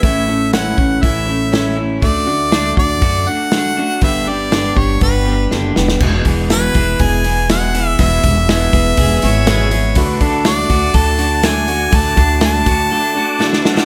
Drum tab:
CC |----------------|----------------|----------------|x---------------|
HH |o---o---o---o---|o---o---o---o---|o---o---o-------|--o-o-o-o-o-o-o-|
SD |----o-------o---|----o-------o---|----o-------o-oo|----o-------o---|
BD |o-----o-o-------|o-----o-o-------|o-----o-o-------|o-o---o-o-------|

CC |----------------|----------------|----------------|
HH |o-o-o-o-o-o-o-o-|o-o-o-o-o-o-o-o-|o-o-o-o---------|
SD |----o-------o---|----o-------o---|----o-------oooo|
BD |o-o---o-o-------|o-o---o-o-------|o-o---o---------|